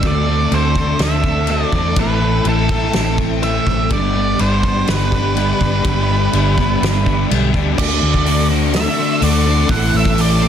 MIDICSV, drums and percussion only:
0, 0, Header, 1, 2, 480
1, 0, Start_track
1, 0, Key_signature, 1, "major"
1, 0, Tempo, 483092
1, 26, Time_signature, 4, 2, 24, 8
1, 10415, End_track
2, 0, Start_track
2, 0, Title_t, "Drums"
2, 27, Note_on_c, 9, 49, 50
2, 29, Note_on_c, 9, 36, 116
2, 126, Note_off_c, 9, 49, 0
2, 128, Note_off_c, 9, 36, 0
2, 514, Note_on_c, 9, 49, 46
2, 613, Note_off_c, 9, 49, 0
2, 750, Note_on_c, 9, 36, 74
2, 850, Note_off_c, 9, 36, 0
2, 986, Note_on_c, 9, 49, 52
2, 997, Note_on_c, 9, 38, 97
2, 1085, Note_off_c, 9, 49, 0
2, 1096, Note_off_c, 9, 38, 0
2, 1229, Note_on_c, 9, 36, 84
2, 1328, Note_off_c, 9, 36, 0
2, 1460, Note_on_c, 9, 49, 57
2, 1559, Note_off_c, 9, 49, 0
2, 1713, Note_on_c, 9, 36, 75
2, 1813, Note_off_c, 9, 36, 0
2, 1949, Note_on_c, 9, 49, 56
2, 1953, Note_on_c, 9, 36, 114
2, 2049, Note_off_c, 9, 49, 0
2, 2052, Note_off_c, 9, 36, 0
2, 2434, Note_on_c, 9, 49, 55
2, 2534, Note_off_c, 9, 49, 0
2, 2676, Note_on_c, 9, 36, 83
2, 2775, Note_off_c, 9, 36, 0
2, 2913, Note_on_c, 9, 49, 46
2, 2924, Note_on_c, 9, 38, 96
2, 3013, Note_off_c, 9, 49, 0
2, 3024, Note_off_c, 9, 38, 0
2, 3161, Note_on_c, 9, 36, 79
2, 3261, Note_off_c, 9, 36, 0
2, 3406, Note_on_c, 9, 49, 48
2, 3506, Note_off_c, 9, 49, 0
2, 3643, Note_on_c, 9, 36, 78
2, 3742, Note_off_c, 9, 36, 0
2, 3879, Note_on_c, 9, 49, 51
2, 3882, Note_on_c, 9, 36, 122
2, 3978, Note_off_c, 9, 49, 0
2, 3982, Note_off_c, 9, 36, 0
2, 4365, Note_on_c, 9, 49, 46
2, 4464, Note_off_c, 9, 49, 0
2, 4604, Note_on_c, 9, 36, 78
2, 4704, Note_off_c, 9, 36, 0
2, 4844, Note_on_c, 9, 49, 49
2, 4855, Note_on_c, 9, 38, 107
2, 4943, Note_off_c, 9, 49, 0
2, 4954, Note_off_c, 9, 38, 0
2, 5088, Note_on_c, 9, 36, 84
2, 5187, Note_off_c, 9, 36, 0
2, 5332, Note_on_c, 9, 49, 54
2, 5432, Note_off_c, 9, 49, 0
2, 5571, Note_on_c, 9, 36, 73
2, 5671, Note_off_c, 9, 36, 0
2, 5809, Note_on_c, 9, 36, 118
2, 5812, Note_on_c, 9, 49, 58
2, 5909, Note_off_c, 9, 36, 0
2, 5911, Note_off_c, 9, 49, 0
2, 6292, Note_on_c, 9, 49, 57
2, 6392, Note_off_c, 9, 49, 0
2, 6534, Note_on_c, 9, 36, 73
2, 6634, Note_off_c, 9, 36, 0
2, 6788, Note_on_c, 9, 49, 58
2, 6799, Note_on_c, 9, 38, 99
2, 6887, Note_off_c, 9, 49, 0
2, 6898, Note_off_c, 9, 38, 0
2, 7018, Note_on_c, 9, 36, 76
2, 7118, Note_off_c, 9, 36, 0
2, 7267, Note_on_c, 9, 49, 60
2, 7366, Note_off_c, 9, 49, 0
2, 7493, Note_on_c, 9, 36, 75
2, 7593, Note_off_c, 9, 36, 0
2, 7733, Note_on_c, 9, 36, 119
2, 7742, Note_on_c, 9, 57, 127
2, 7833, Note_off_c, 9, 36, 0
2, 7841, Note_off_c, 9, 57, 0
2, 8089, Note_on_c, 9, 36, 77
2, 8188, Note_off_c, 9, 36, 0
2, 8209, Note_on_c, 9, 46, 65
2, 8308, Note_off_c, 9, 46, 0
2, 8679, Note_on_c, 9, 46, 67
2, 8690, Note_on_c, 9, 38, 114
2, 8778, Note_off_c, 9, 46, 0
2, 8789, Note_off_c, 9, 38, 0
2, 9161, Note_on_c, 9, 46, 61
2, 9260, Note_off_c, 9, 46, 0
2, 9630, Note_on_c, 9, 36, 119
2, 9632, Note_on_c, 9, 46, 75
2, 9730, Note_off_c, 9, 36, 0
2, 9731, Note_off_c, 9, 46, 0
2, 9989, Note_on_c, 9, 36, 95
2, 10088, Note_off_c, 9, 36, 0
2, 10113, Note_on_c, 9, 46, 64
2, 10212, Note_off_c, 9, 46, 0
2, 10415, End_track
0, 0, End_of_file